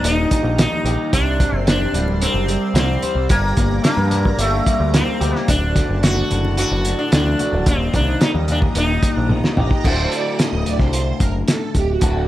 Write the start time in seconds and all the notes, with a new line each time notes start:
Already playing: D#2 A#2 G3 G4 D#5 A#5
0.03 D#1 D#3 D#4, closed hi-hat
0.31 A#2, kick, closed hi-hat
0.43 A#1
0.58 D#3 D#4, snare, closed hi-hat, high conga
0.72 high conga
0.84 A#1 G4, closed hi-hat, low conga
1.12 C2 C3 D4 D5 C6, kick, closed hi-hat
1.40 C4, kick, closed hi-hat
1.52 F#1
1.57 C4
1.67 D4 G4, snare, closed hi-hat
1.80 high conga
1.93 D1 G3, closed hi-hat, low conga
2.08 high conga
2.22 C4, closed hi-hat
2.34 F#1
2.48 G3, closed hi-hat
2.74 C2 C4, snare, closed hi-hat
2.89 high conga
3.02 C5, closed hi-hat, low conga
3.15 C2
3.29 G1 G2 A#3 A#5, kick, closed hi-hat
3.57 G1 A#3, kick, closed hi-hat
3.71 low conga
3.84 A#3 D4, snare, closed hi-hat
3.97 G2, high conga
4.11 G3, closed hi-hat, low conga
4.25 kick, high conga
4.38 G1 A3 A#3, closed hi-hat
4.66 G3, kick, closed hi-hat
4.80 D2
4.94 A#3 C4, snare, closed hi-hat
5.08 high conga
5.20 D2 G4, closed hi-hat, low conga
5.36 A#3, snare
5.48 D1 D2 D4 F#4 D5 A5, kick, closed hi-hat
5.76 D3, kick, snare, closed hi-hat
5.89 F#1
6.03 A3 F#4, snare, closed hi-hat
6.16 high conga
6.31 F#1 A2, closed hi-hat, low conga
6.45 high conga
6.57 D3 F#4, closed hi-hat
6.71 F#1
6.85 A2, closed hi-hat
6.99 D4
7.12 D2 D3 D4, snare, closed hi-hat
7.26 high conga
7.39 F#4, closed hi-hat, low conga
7.53 D1
7.66 D#1 D#2 C4 G4 D#5 A#5, kick, closed hi-hat
7.93 C2 D#3 D4, kick, closed hi-hat
8.08 low conga
8.21 G3 D#4, snare, closed hi-hat
8.35 D#2, high conga
8.48 A#2 D4, closed hi-hat, low conga
8.62 kick, high conga
8.75 D#1 D#3 D#4, closed hi-hat
9.03 A#2, kick, closed hi-hat
9.14 A#1 D4
9.29 D#3, high tom, high conga
9.44 snare, high conga
9.57 A1 G4, mid tom, low conga
9.71 kick
9.84 D1 D2 A2 D3 A3 F#4 C5, kick, crash
10.12 D5, closed hi-hat
10.38 D#5, snare, closed hi-hat
10.53 D1
10.66 D1 D5, closed hi-hat
10.79 C2 C5, kick, snare
10.93 closed hi-hat
11.19 F#1 A#4, kick, closed hi-hat
11.47 A4, snare, closed hi-hat
11.75 D1 G4, kick, closed hi-hat
11.89 F#4
12.01 D1 D2 A2 D3 A3 F#4, kick, closed hi-hat